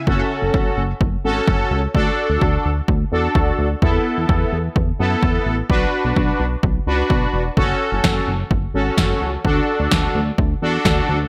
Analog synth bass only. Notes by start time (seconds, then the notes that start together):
0.07 F#1
0.42 F#1
0.54 F#1
0.77 F#1
1.01 F#1
1.24 G#1
1.48 F#1
1.71 C#2
1.95 D2
2.30 D2
2.41 D2
2.65 D2
2.88 D2
3.12 E2
3.35 D2
3.59 D2
3.82 E2
4.17 E2
4.29 E2
4.53 E2
4.76 E2
4.99 F#2
5.23 E2
5.46 A1
5.70 B1
6.05 B1
6.16 B1
6.40 B1
6.63 B1
6.87 C#2
7.10 B1
7.34 E1
7.57 F#1
7.92 F#1
8.04 F#1
8.27 F#1
8.51 F#1
8.74 G#1
8.98 F#1
9.21 C#2
9.45 D2
9.80 D2
9.92 D2
10.15 D2
10.38 D2
10.62 E2
10.85 D2
11.09 D2